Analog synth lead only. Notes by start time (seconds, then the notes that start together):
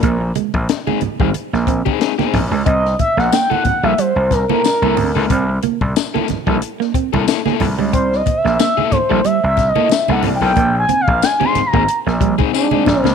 Already playing: A#4
2.65 D#5
3.00 E5
3.18 F#5
3.33 G5
3.50 F#5
3.84 E5
3.99 C5
4.32 A#4
4.51 A#4
7.93 C5
8.15 D#5
8.37 E5
8.59 E5
8.91 C5
9.24 E5
9.47 E5
9.68 D#5
9.91 E5
10.12 F#5
10.36 G5
10.79 G#5
11.01 F5
11.24 G#5
11.45 C6
11.66 A#5
12.55 D4
13.01 C4